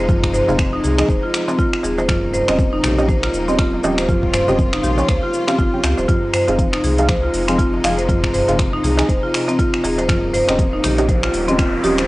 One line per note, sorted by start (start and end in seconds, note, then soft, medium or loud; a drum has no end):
0.00 0.42 F1 loud
0.00 2.05 C3 medium
0.00 2.05 F3 medium
0.00 2.05 G#3 medium
0.00 2.05 D#4 medium
0.09 0.22 F4 medium
0.09 kick loud
0.09 high conga loud
0.09 darbuka dum loud
0.09 shaker soft
0.23 finger snap medium
0.23 kick medium
0.33 0.48 C5 loud
0.33 muted conga medium
0.33 darbuka dum medium
0.33 shaker loud
0.48 0.79 F1 loud
0.48 0.54 C4 medium
0.48 0.56 D#4 loud
0.48 0.56 G#4 medium
0.48 0.56 F5 loud
0.48 darbuka tek medium
0.48 low conga medium
0.48 shaker medium
0.59 finger snap loud
0.59 kick loud
0.59 muted conga soft
0.59 high conga medium
0.59 shaker soft
0.73 0.79 D#4 loud
0.84 1.03 C2 medium
0.84 0.98 G#4 medium
0.84 muted conga medium
0.84 low conga medium
0.84 shaker loud
0.98 1.12 D#4 medium
0.98 1.12 G#4 medium
0.98 1.12 D#5 loud
0.98 finger snap medium
0.98 darbuka ka loud
0.98 high conga medium
0.98 shaker medium
1.09 1.19 D#1 medium
1.09 1.22 C5 medium
1.09 kick loud
1.09 shaker soft
1.23 1.33 F4 medium
1.34 finger snap loud
1.34 shaker loud
1.48 1.58 C4 loud
1.48 muted conga medium
1.48 darbuka ka loud
1.48 darbuka tek medium
1.48 shaker medium
1.59 1.72 F4 medium
1.59 kick loud
1.59 shaker soft
1.73 finger snap medium
1.73 muted conga soft
1.83 2.42 D#1 medium
1.83 1.98 G#4 medium
1.83 darbuka tek medium
1.83 shaker loud
1.98 2.08 C5 medium
1.98 muted conga medium
1.98 darbuka ka loud
1.98 shaker medium
2.08 6.05 C#3 medium
2.08 6.05 G3 medium
2.08 6.05 A#3 medium
2.08 4.07 D#4 medium
2.08 2.22 F4 medium
2.08 finger snap medium
2.08 kick loud
2.08 high conga loud
2.08 darbuka dum medium
2.08 shaker soft
2.34 2.48 C5 loud
2.34 muted conga medium
2.34 darbuka dum medium
2.34 shaker medium
2.48 2.79 D#1 loud
2.48 2.54 C4 medium
2.48 2.62 C#4 medium
2.48 2.62 G4 medium
2.48 2.62 D#5 medium
2.48 finger snap medium
2.48 darbuka tek medium
2.48 shaker medium
2.59 kick loud
2.59 shaker soft
2.73 2.79 D#4 loud
2.83 3.29 A#1 medium
2.83 2.97 G4 medium
2.83 finger snap medium
2.83 muted conga soft
2.83 low conga loud
2.83 shaker loud
2.98 3.06 C#4 loud
2.98 3.06 G4 medium
2.98 3.06 D#5 loud
2.98 darbuka ka loud
2.98 shaker medium
3.08 3.22 C5 medium
3.08 kick loud
3.08 muted conga soft
3.08 high conga medium
3.08 shaker soft
3.23 3.33 F4 medium
3.23 finger snap medium
3.33 3.79 D#1 medium
3.33 shaker medium
3.48 3.58 C4 loud
3.48 3.62 C#4 medium
3.48 3.62 G4 medium
3.48 3.62 D#5 medium
3.48 muted conga medium
3.48 high conga medium
3.48 shaker medium
3.59 3.72 F4 medium
3.59 finger snap loud
3.59 kick loud
3.59 shaker soft
3.73 muted conga soft
3.73 darbuka ka medium
3.83 4.42 D#1 loud
3.83 3.95 C#4 loud
3.83 3.97 G4 medium
3.83 3.95 G4 loud
3.83 3.95 D#5 loud
3.83 high conga medium
3.83 darbuka tek loud
3.83 shaker loud
3.98 4.08 C5 medium
3.98 finger snap medium
3.98 muted conga medium
3.98 shaker medium
4.08 6.06 F4 medium
4.08 4.22 F4 medium
4.08 kick loud
4.08 high conga loud
4.08 darbuka dum loud
4.08 shaker soft
4.23 kick medium
4.33 4.47 C5 loud
4.33 finger snap medium
4.33 muted conga soft
4.33 darbuka dum medium
4.33 shaker loud
4.48 4.79 D#1 loud
4.48 4.54 C4 medium
4.48 4.56 C#4 loud
4.48 4.56 G4 medium
4.48 4.56 D#5 loud
4.48 darbuka tek medium
4.48 low conga medium
4.48 shaker medium
4.59 kick loud
4.59 muted conga soft
4.59 high conga medium
4.59 shaker soft
4.73 4.79 D#4 medium
4.73 finger snap medium
4.83 5.03 A#1 medium
4.83 4.97 G4 medium
4.83 muted conga medium
4.83 low conga medium
4.83 shaker loud
4.98 5.12 C#4 medium
4.98 5.12 G4 medium
4.98 5.12 C#5 medium
4.98 darbuka ka loud
4.98 high conga medium
4.98 shaker medium
5.08 5.19 C#2 medium
5.08 5.22 C5 medium
5.08 finger snap medium
5.08 kick loud
5.08 muted conga soft
5.08 shaker soft
5.23 5.33 F4 medium
5.34 shaker medium
5.48 5.58 C4 medium
5.48 5.62 C#4 medium
5.48 5.62 G4 medium
5.48 5.62 F5 medium
5.48 finger snap medium
5.48 darbuka ka loud
5.48 muted conga soft
5.48 darbuka tek medium
5.48 shaker medium
5.58 5.69 G1 medium
5.58 5.72 F4 medium
5.58 kick loud
5.58 shaker soft
5.73 5.81 C#4 medium
5.73 5.81 G4 medium
5.73 5.81 G5 medium
5.73 muted conga soft
5.83 5.94 C#2 medium
5.83 5.98 G4 medium
5.83 finger snap medium
5.83 darbuka tek loud
5.83 shaker medium
5.98 6.06 D#1 loud
5.98 6.08 C5 medium
5.98 darbuka ka loud
5.98 muted conga medium
5.98 shaker medium
6.08 10.05 C3 medium
6.08 10.05 F3 medium
6.08 10.05 G#3 medium
6.08 12.07 D#4 medium
6.08 6.22 F4 medium
6.08 kick loud
6.08 closed hi-hat soft
6.08 high conga loud
6.08 darbuka dum medium
6.08 shaker soft
6.33 6.47 C5 loud
6.33 finger snap medium
6.33 open hi-hat medium
6.33 muted conga soft
6.33 darbuka dum medium
6.33 shaker medium
6.48 6.79 F1 loud
6.48 6.54 C4 medium
6.48 6.62 D#4 medium
6.48 6.62 G#4 medium
6.48 6.62 F5 medium
6.48 closed hi-hat medium
6.48 darbuka tek medium
6.48 shaker medium
6.59 kick loud
6.59 closed hi-hat soft
6.59 muted conga soft
6.59 high conga medium
6.59 shaker soft
6.73 6.79 D#4 loud
6.73 finger snap medium
6.83 7.29 C2 medium
6.83 6.98 G#4 medium
6.83 open hi-hat medium
6.83 muted conga medium
6.83 low conga medium
6.83 shaker medium
6.98 7.06 D#4 loud
6.98 7.06 G#4 medium
6.98 7.07 F5 loud
6.98 closed hi-hat medium
6.98 darbuka ka loud
6.98 shaker medium
7.09 7.22 C5 medium
7.09 finger snap medium
7.09 kick loud
7.09 closed hi-hat soft
7.09 muted conga soft
7.09 high conga loud
7.09 shaker soft
7.23 7.33 F4 medium
7.33 7.79 F1 loud
7.33 open hi-hat medium
7.33 shaker medium
7.48 7.58 C4 medium
7.48 7.62 D#4 medium
7.48 7.62 G#4 medium
7.48 7.62 F5 medium
7.48 finger snap medium
7.48 closed hi-hat medium
7.48 muted conga soft
7.48 high conga medium
7.48 shaker medium
7.59 7.72 F4 medium
7.59 kick loud
7.59 closed hi-hat soft
7.59 shaker soft
7.73 muted conga soft
7.73 darbuka ka medium
7.83 8.42 F1 loud
7.83 7.95 D#4 loud
7.83 7.98 G#4 medium
7.83 7.95 G#4 medium
7.83 7.95 F5 loud
7.83 finger snap medium
7.83 open hi-hat medium
7.83 high conga medium
7.83 darbuka tek medium
7.83 shaker medium
7.98 8.08 C5 medium
7.98 closed hi-hat medium
7.98 muted conga soft
7.98 shaker soft
8.08 8.22 F4 medium
8.08 kick loud
8.08 closed hi-hat soft
8.08 high conga loud
8.08 darbuka dum medium
8.08 shaker soft
8.23 finger snap medium
8.23 kick medium
8.34 8.48 C5 loud
8.34 open hi-hat medium
8.34 muted conga soft
8.34 darbuka dum medium
8.34 shaker medium
8.48 8.79 F1 loud
8.48 8.54 C4 medium
8.48 8.56 D#4 loud
8.48 8.56 G#4 medium
8.48 8.56 F5 loud
8.48 closed hi-hat medium
8.48 darbuka tek medium
8.48 low conga medium
8.48 shaker medium
8.58 finger snap medium
8.58 kick loud
8.58 closed hi-hat soft
8.58 muted conga soft
8.58 high conga medium
8.58 shaker soft
8.73 8.79 D#4 loud
8.84 9.03 C2 medium
8.84 8.98 G#4 medium
8.84 open hi-hat medium
8.84 muted conga medium
8.84 low conga medium
8.84 shaker medium
8.97 9.12 D#4 medium
8.97 9.12 G#4 medium
8.97 9.12 D#5 medium
8.97 finger snap medium
8.97 closed hi-hat medium
8.97 darbuka ka loud
8.97 high conga medium
8.97 shaker soft
9.09 9.19 D#1 medium
9.09 9.22 C5 medium
9.09 kick loud
9.09 closed hi-hat soft
9.09 shaker soft
9.23 9.33 F4 medium
9.34 finger snap medium
9.34 open hi-hat medium
9.34 shaker medium
9.48 9.58 C4 loud
9.48 closed hi-hat medium
9.48 darbuka ka medium
9.48 muted conga medium
9.48 darbuka tek medium
9.48 shaker soft
9.59 9.72 F4 medium
9.59 kick loud
9.59 closed hi-hat soft
9.59 shaker soft
9.74 finger snap medium
9.74 muted conga soft
9.84 10.42 D#1 medium
9.84 9.98 G#4 medium
9.84 open hi-hat medium
9.84 darbuka tek medium
9.84 shaker medium
9.98 10.08 C5 medium
9.98 closed hi-hat medium
9.98 darbuka ka loud
9.98 muted conga medium
9.98 shaker soft
10.08 12.07 C#3 medium
10.08 12.07 G3 medium
10.08 12.07 A#3 medium
10.08 10.22 F4 medium
10.08 finger snap medium
10.08 kick loud
10.08 closed hi-hat soft
10.08 riser medium
10.08 high conga loud
10.08 darbuka dum medium
10.08 shaker soft
10.33 10.48 C5 loud
10.33 open hi-hat medium
10.33 muted conga medium
10.33 darbuka dum medium
10.33 shaker medium
10.48 10.79 D#1 loud
10.48 10.54 C4 medium
10.48 10.62 C#4 medium
10.48 10.62 G4 medium
10.48 10.62 D#5 loud
10.48 finger snap medium
10.48 closed hi-hat medium
10.48 darbuka tek medium
10.48 shaker soft
10.58 kick loud
10.58 closed hi-hat soft
10.58 muted conga soft
10.58 high conga medium
10.58 shaker soft
10.73 10.79 D#4 loud
10.84 11.29 A#1 medium
10.84 10.98 G4 medium
10.84 finger snap medium
10.84 open hi-hat medium
10.84 muted conga medium
10.84 low conga medium
10.84 shaker medium
10.98 11.06 C#4 loud
10.98 11.06 G4 medium
10.98 11.06 D#5 loud
10.98 closed hi-hat medium
10.98 darbuka ka loud
10.98 shaker medium
11.09 11.22 C5 medium
11.09 kick loud
11.09 closed hi-hat soft
11.09 muted conga soft
11.09 high conga medium
11.09 shaker soft
11.23 11.33 F4 medium
11.23 finger snap medium
11.34 11.79 D#1 medium
11.34 open hi-hat medium
11.34 shaker medium
11.48 11.58 C4 loud
11.48 11.62 C#4 medium
11.48 11.62 G4 medium
11.48 11.62 D#5 medium
11.48 closed hi-hat medium
11.48 muted conga soft
11.48 high conga medium
11.48 shaker soft
11.59 11.72 F4 medium
11.59 finger snap medium
11.59 kick loud
11.59 closed hi-hat soft
11.59 shaker soft
11.73 darbuka ka medium
11.73 muted conga soft
11.83 12.07 D#1 loud
11.83 11.95 C#4 loud
11.83 11.98 G4 medium
11.83 11.95 G4 loud
11.83 11.95 D#5 loud
11.83 open hi-hat medium
11.83 high conga medium
11.83 darbuka tek medium
11.83 shaker medium
11.97 12.07 C5 medium
11.97 finger snap medium
11.97 closed hi-hat medium
11.97 muted conga medium
11.97 shaker soft